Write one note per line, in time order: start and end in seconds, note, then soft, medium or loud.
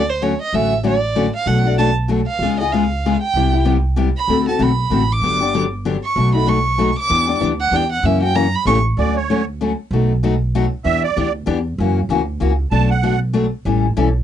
0.00 0.34 D2 medium
0.00 0.11 D5 loud
0.10 0.25 C5 medium
0.22 0.32 D3 medium
0.22 0.32 F#3 medium
0.22 0.32 A3 medium
0.22 0.33 C#4 loud
0.22 0.33 F#4 medium
0.22 0.41 C#5 medium
0.42 0.56 D#5 medium
0.53 1.28 A1 medium
0.53 0.73 D3 medium
0.53 0.73 F#3 medium
0.53 0.73 A3 medium
0.53 0.73 C#4 medium
0.53 0.73 F#4 medium
0.53 0.85 E5 loud
0.83 0.94 D3 medium
0.83 0.95 F#3 medium
0.83 0.95 A3 medium
0.83 0.95 C#4 medium
0.83 0.95 F#4 medium
0.83 1.32 D5 medium
1.15 1.26 D3 medium
1.15 1.26 F#3 medium
1.15 1.26 A3 medium
1.15 1.27 C#4 medium
1.15 1.26 F#4 loud
1.36 1.48 F5 loud
1.46 2.22 B1 medium
1.46 1.64 B2 medium
1.46 1.64 F#3 medium
1.46 1.65 A3 medium
1.46 1.64 D4 medium
1.46 1.64 F#4 medium
1.46 1.77 F#5 medium
1.65 1.78 A3 soft
1.65 1.78 D4 medium
1.65 1.78 F#4 medium
1.78 1.89 B2 medium
1.78 1.89 F#3 medium
1.78 1.89 A3 medium
1.78 1.89 D4 medium
1.78 1.89 F#4 medium
1.78 1.89 A5 loud
2.08 2.19 B2 medium
2.08 2.20 F#3 medium
2.08 2.20 A3 medium
2.08 2.20 D4 medium
2.08 2.20 F#4 medium
2.27 2.57 F5 medium
2.39 3.15 C#2 medium
2.39 2.59 C#3 medium
2.39 2.59 G#3 medium
2.39 2.59 F4 medium
2.43 2.59 B3 medium
2.43 2.59 G#4 medium
2.60 2.73 B3 soft
2.60 2.73 F4 medium
2.60 2.72 G#4 medium
2.60 2.74 D#5 medium
2.72 2.83 C#3 medium
2.72 2.84 G#3 medium
2.72 2.84 B3 medium
2.72 2.83 F4 medium
2.72 2.84 G#4 medium
2.72 3.22 F5 medium
3.06 3.15 C#3 medium
3.06 3.15 G#3 medium
3.06 3.15 B3 medium
3.06 3.15 F4 medium
3.06 3.15 G#4 medium
3.22 3.63 G5 medium
3.34 4.09 C2 medium
3.34 3.53 C3 medium
3.34 3.53 G3 medium
3.34 3.53 B3 medium
3.34 3.53 E4 medium
3.34 3.52 G4 medium
3.53 3.64 B3 soft
3.53 3.64 E4 soft
3.53 3.65 G4 medium
3.65 3.76 C3 medium
3.65 3.76 G3 medium
3.65 3.76 B3 medium
3.65 3.76 E4 medium
3.65 3.76 G4 medium
3.96 4.07 C3 medium
3.96 4.07 G3 medium
3.96 4.08 B3 medium
3.96 4.08 E4 medium
3.96 4.08 G4 medium
4.17 4.45 B5 loud
4.28 4.53 D2 medium
4.28 4.46 D3 medium
4.28 4.46 A3 medium
4.28 4.47 C4 medium
4.28 4.47 F#4 medium
4.28 4.46 A4 medium
4.48 4.58 C4 soft
4.48 4.58 F#4 medium
4.48 4.59 A4 medium
4.48 4.64 A5 medium
4.59 4.86 B1 medium
4.59 4.70 D3 medium
4.59 4.70 A3 medium
4.59 4.70 C4 medium
4.59 4.70 F#4 medium
4.59 4.71 A4 medium
4.59 5.14 B5 medium
4.90 5.17 A1 medium
4.90 5.01 D3 medium
4.90 5.02 A3 medium
4.90 5.02 C4 medium
4.90 5.02 F#4 medium
4.90 5.02 A4 medium
5.12 5.55 D6 loud
5.21 5.97 G1 medium
5.21 5.40 D3 medium
5.21 5.40 F#3 medium
5.21 5.41 B3 medium
5.21 5.41 D4 medium
5.21 5.39 G4 medium
5.41 5.53 B3 soft
5.41 5.53 D4 soft
5.41 5.53 G4 medium
5.54 5.65 D3 medium
5.54 5.65 F#3 medium
5.54 5.65 B3 medium
5.54 5.65 D4 medium
5.54 5.65 G4 medium
5.85 5.96 D3 medium
5.85 5.96 F#3 medium
5.85 5.96 B3 medium
5.85 5.96 D4 medium
5.85 5.96 G4 medium
6.04 6.33 C#6 medium
6.16 6.91 B1 medium
6.16 6.34 B2 medium
6.16 6.34 F#3 medium
6.16 6.34 A3 medium
6.16 6.33 D#4 medium
6.16 6.33 F#4 medium
6.34 6.46 A3 soft
6.34 6.46 D#4 medium
6.34 6.47 F#4 medium
6.34 6.50 B5 loud
6.46 6.57 B2 medium
6.46 6.58 F#3 medium
6.46 6.58 A3 medium
6.46 6.58 D#4 medium
6.46 6.58 F#4 medium
6.46 6.98 C#6 medium
6.78 6.89 B2 medium
6.78 6.89 F#3 medium
6.78 6.89 A3 medium
6.78 6.90 D#4 loud
6.78 6.90 F#4 medium
6.99 7.39 D6 loud
7.09 7.35 E2 medium
7.09 7.27 E3 medium
7.09 7.27 B3 medium
7.09 7.27 D4 medium
7.09 7.26 G4 medium
7.27 7.39 B3 soft
7.27 7.39 D4 medium
7.27 7.40 G4 medium
7.40 7.68 D2 medium
7.40 7.51 E3 medium
7.40 7.51 B3 medium
7.40 7.51 D4 medium
7.40 7.52 G4 medium
7.61 7.77 F#5 loud
7.71 7.98 E2 medium
7.71 7.83 E3 medium
7.71 7.83 B3 medium
7.71 7.83 D4 loud
7.71 7.83 G4 loud
7.76 7.92 G5 medium
7.92 8.07 F#5 medium
8.03 8.53 F#2 medium
8.03 8.22 C#3 medium
8.03 8.22 E3 medium
8.03 8.22 A#3 medium
8.03 8.22 C#4 medium
8.03 8.21 F#4 medium
8.03 8.22 E5 medium
8.22 8.34 A#3 soft
8.22 8.34 C#4 medium
8.22 8.34 F#4 medium
8.22 8.37 G5 loud
8.34 8.45 C#3 medium
8.34 8.46 E3 medium
8.34 8.46 A#3 medium
8.34 8.46 C#4 medium
8.34 8.46 F#4 medium
8.34 8.56 A#5 medium
8.55 8.66 B5 loud
8.65 8.91 A1 medium
8.65 8.77 C#3 medium
8.65 8.77 E3 medium
8.65 8.77 A3 medium
8.65 8.77 C#4 medium
8.65 8.78 G4 loud
8.65 8.78 C#6 medium
8.97 9.72 D2 medium
8.97 9.17 D3 medium
8.97 9.17 F#3 medium
8.97 9.18 A3 medium
8.97 9.18 C#4 medium
8.97 9.18 F#4 medium
8.97 9.16 D5 medium
9.16 9.45 C#5 medium
9.30 9.40 D3 medium
9.30 9.40 F#3 medium
9.30 9.40 A3 medium
9.30 9.40 C#4 medium
9.30 9.40 F#4 medium
9.61 9.71 D3 medium
9.61 9.71 F#3 medium
9.61 9.71 A3 medium
9.61 9.71 C#4 medium
9.61 9.71 F#4 medium
9.91 10.66 B1 medium
9.91 10.12 B2 medium
9.91 10.11 F#3 medium
9.91 10.12 A3 medium
9.91 10.12 D#4 medium
9.91 10.12 F#4 medium
10.23 10.33 B2 medium
10.23 10.34 F#3 medium
10.23 10.34 A3 medium
10.23 10.34 D#4 medium
10.23 10.34 F#4 medium
10.55 10.65 B2 medium
10.55 10.65 F#3 medium
10.55 10.65 A3 medium
10.55 10.65 D#4 medium
10.55 10.65 F#4 loud
10.84 11.10 E2 medium
10.84 11.04 E3 medium
10.84 11.05 B3 medium
10.84 11.05 D4 medium
10.84 11.05 G4 medium
10.84 11.03 E5 loud
11.03 11.32 D5 medium
11.16 11.43 D2 medium
11.16 11.27 E3 medium
11.16 11.27 B3 medium
11.16 11.27 D4 medium
11.16 11.27 G4 medium
11.46 11.74 E2 medium
11.46 11.57 E3 medium
11.46 11.58 B3 loud
11.46 11.58 D4 medium
11.46 11.58 G4 medium
11.78 12.04 F#2 medium
11.78 11.99 C#3 medium
11.78 11.99 E3 medium
11.78 11.99 A#3 medium
11.78 11.99 C#4 medium
11.78 11.99 F#4 medium
12.09 12.36 D2 medium
12.09 12.21 C#3 medium
12.09 12.20 E3 medium
12.09 12.21 A#3 medium
12.09 12.21 C#4 medium
12.09 12.21 F#4 medium
12.40 12.67 C#2 medium
12.40 12.51 C#3 medium
12.40 12.51 E3 medium
12.40 12.51 A#3 medium
12.40 12.52 C#4 medium
12.40 12.52 F#4 medium
12.71 13.47 B1 medium
12.71 12.92 B2 medium
12.71 12.92 F#3 medium
12.71 12.92 A3 medium
12.71 12.92 D4 medium
12.71 12.92 F#4 medium
12.71 12.90 A5 loud
12.90 13.20 F#5 medium
13.03 13.14 B2 medium
13.03 13.14 F#3 medium
13.03 13.14 A3 medium
13.03 13.14 D4 medium
13.03 13.14 F#4 medium
13.33 13.45 B2 medium
13.33 13.45 F#3 medium
13.33 13.45 A3 medium
13.33 13.45 D4 medium
13.33 13.45 F#4 medium
13.65 13.91 A1 medium
13.65 13.85 E3 medium
13.65 13.85 G3 medium
13.65 13.86 C#4 medium
13.65 13.86 E4 medium
13.65 13.86 A4 medium
13.97 14.23 B1 medium
13.97 14.08 E3 medium
13.97 14.08 G3 medium
13.97 14.08 C#4 medium
13.97 14.08 E4 medium
13.97 14.08 A4 medium